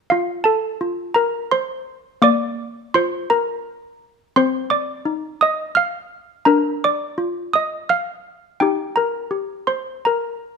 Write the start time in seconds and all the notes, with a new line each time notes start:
0.10 F4 F5
0.44 A4 A5
0.81 F4
1.14 A#4 A#5
1.51 C5 C6
2.22 A#3 D5 D6
2.94 F4 C5 C6
3.30 A#4 A#5
4.36 C4 C5 C6
4.70 D5 D6
5.05 D#4
5.41 D#5 D#6
5.75 F5 F6
6.45 D4 A#4 A#5
6.84 D5 D6
7.18 F4
7.53 D#5 D#6
7.89 F5 F6
8.60 D#4 G4 G5
8.96 A#4 A#5
9.31 G4
9.67 C5 C6
10.05 A#4 A#5